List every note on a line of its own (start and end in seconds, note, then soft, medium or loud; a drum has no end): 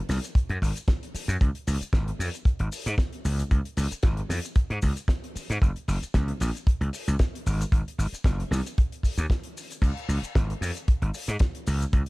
0.09 0.18 C2 medium
0.09 snare medium
0.09 open hi-hat loud
0.09 shaker medium
0.24 closed hi-hat soft
0.24 shaker medium
0.35 kick loud
0.35 closed hi-hat loud
0.35 shaker medium
0.49 0.57 F#2 medium
0.49 closed hi-hat medium
0.62 0.70 G#1 medium
0.62 kick medium
0.62 open hi-hat loud
0.62 shaker medium
0.76 closed hi-hat medium
0.76 shaker medium
0.88 kick loud
0.88 snare loud
0.88 closed hi-hat medium
0.88 shaker soft
1.03 closed hi-hat medium
1.14 muted slap bass stroke soft
1.14 open hi-hat loud
1.14 shaker medium
1.28 1.36 F#2 medium
1.28 closed hi-hat medium
1.28 shaker medium
1.41 1.49 C#2 medium
1.41 kick loud
1.41 closed hi-hat medium
1.41 shaker medium
1.55 closed hi-hat medium
1.67 1.76 C#2 loud
1.67 open hi-hat loud
1.67 shaker medium
1.81 muted slap bass stroke soft
1.81 closed hi-hat medium
1.81 shaker medium
1.93 2.10 G#1 medium
1.93 kick loud
1.93 snare loud
1.93 closed hi-hat medium
1.93 shaker medium
2.08 closed hi-hat medium
2.19 2.28 F2 medium
2.19 open hi-hat loud
2.19 shaker medium
2.34 closed hi-hat medium
2.34 shaker medium
2.45 muted slap bass stroke soft
2.45 kick loud
2.45 closed hi-hat medium
2.45 shaker medium
2.59 2.67 G#1 loud
2.59 closed hi-hat medium
2.72 open hi-hat loud
2.72 shaker medium
2.86 2.94 G#2 loud
2.86 closed hi-hat medium
2.86 shaker medium
2.98 kick loud
2.98 snare loud
2.98 closed hi-hat medium
2.98 shaker soft
3.13 closed hi-hat medium
3.25 3.42 C#2 medium
3.25 open hi-hat loud
3.25 shaker medium
3.39 closed hi-hat medium
3.39 shaker medium
3.51 3.60 C#2 medium
3.51 kick loud
3.51 closed hi-hat loud
3.51 shaker soft
3.65 closed hi-hat medium
3.77 3.86 C#2 loud
3.77 open hi-hat loud
3.77 shaker medium
3.91 muted slap bass stroke soft
3.91 closed hi-hat soft
3.91 shaker medium
4.03 4.20 G#1 medium
4.03 kick loud
4.03 snare loud
4.03 closed hi-hat loud
4.03 shaker medium
4.17 closed hi-hat medium
4.29 4.38 F2 medium
4.29 snare medium
4.29 open hi-hat loud
4.29 shaker medium
4.44 closed hi-hat medium
4.44 shaker medium
4.56 kick loud
4.56 closed hi-hat loud
4.56 shaker medium
4.70 4.78 G#2 medium
4.70 closed hi-hat medium
4.82 4.91 C#2 medium
4.82 kick medium
4.82 open hi-hat loud
4.82 shaker medium
4.97 closed hi-hat medium
4.97 shaker medium
5.08 kick loud
5.08 snare loud
5.08 closed hi-hat loud
5.08 shaker medium
5.24 closed hi-hat medium
5.36 muted slap bass stroke soft
5.36 open hi-hat medium
5.36 shaker medium
5.50 5.57 G#2 medium
5.50 closed hi-hat medium
5.50 shaker medium
5.62 5.70 F#1 loud
5.62 kick loud
5.62 closed hi-hat medium
5.62 shaker medium
5.76 closed hi-hat medium
5.88 5.97 F#1 loud
5.88 open hi-hat loud
5.88 shaker medium
6.02 muted slap bass stroke soft
6.02 closed hi-hat medium
6.02 shaker medium
6.14 6.31 C#2 medium
6.14 kick loud
6.14 snare loud
6.14 closed hi-hat loud
6.14 shaker medium
6.28 closed hi-hat medium
6.40 6.49 A#1 medium
6.40 open hi-hat medium
6.40 shaker loud
6.55 closed hi-hat medium
6.55 shaker medium
6.67 muted slap bass stroke soft
6.67 kick loud
6.67 closed hi-hat loud
6.67 shaker soft
6.81 6.88 C#2 loud
6.81 closed hi-hat medium
6.93 open hi-hat loud
6.93 shaker medium
7.08 7.15 C#2 loud
7.08 closed hi-hat medium
7.08 shaker medium
7.19 kick loud
7.19 snare loud
7.19 closed hi-hat medium
7.19 shaker medium
7.35 closed hi-hat medium
7.46 7.63 G#1 medium
7.46 open hi-hat medium
7.46 shaker medium
7.61 closed hi-hat medium
7.61 shaker medium
7.72 7.81 G#1 loud
7.72 kick loud
7.72 closed hi-hat loud
7.72 shaker medium
7.88 closed hi-hat medium
7.98 8.07 G#1 loud
7.98 open hi-hat loud
7.98 shaker medium
8.12 muted slap bass stroke soft
8.12 closed hi-hat medium
8.12 shaker medium
8.24 8.41 F#1 medium
8.24 kick loud
8.24 snare loud
8.24 closed hi-hat loud
8.24 shaker medium
8.40 closed hi-hat medium
8.51 8.60 C2 medium
8.51 snare medium
8.51 open hi-hat loud
8.51 shaker medium
8.66 closed hi-hat medium
8.66 shaker medium
8.78 kick loud
8.78 closed hi-hat medium
8.78 shaker soft
8.92 closed hi-hat medium
9.03 kick medium
9.03 open hi-hat loud
9.03 shaker medium
9.18 9.25 D#2 medium
9.18 closed hi-hat medium
9.18 shaker medium
9.30 kick loud
9.30 snare loud
9.30 closed hi-hat medium
9.30 shaker soft
9.44 closed hi-hat medium
9.57 open hi-hat medium
9.57 shaker medium
9.71 closed hi-hat medium
9.71 shaker medium
9.82 9.91 C#2 medium
9.82 kick loud
9.82 closed hi-hat medium
9.82 crash medium
9.82 shaker medium
9.97 closed hi-hat soft
10.08 10.17 C#2 medium
10.08 open hi-hat loud
10.08 shaker medium
10.22 muted slap bass stroke soft
10.22 closed hi-hat medium
10.22 shaker medium
10.35 10.52 G#1 medium
10.35 kick loud
10.35 snare loud
10.35 closed hi-hat loud
10.35 shaker soft
10.50 closed hi-hat medium
10.61 10.70 F2 medium
10.61 open hi-hat loud
10.61 shaker medium
10.75 closed hi-hat medium
10.75 shaker medium
10.88 muted slap bass stroke soft
10.88 kick loud
10.88 closed hi-hat loud
10.88 shaker medium
11.02 11.09 G#1 loud
11.02 closed hi-hat medium
11.14 open hi-hat loud
11.14 shaker medium
11.27 11.36 G#2 loud
11.27 closed hi-hat medium
11.27 shaker medium
11.39 kick loud
11.39 snare loud
11.39 closed hi-hat loud
11.39 shaker soft
11.55 closed hi-hat medium
11.67 11.84 C#2 medium
11.67 open hi-hat loud
11.67 shaker medium
11.81 closed hi-hat medium
11.81 shaker medium
11.93 12.02 C#2 medium
11.93 kick loud
11.93 closed hi-hat loud
11.93 shaker soft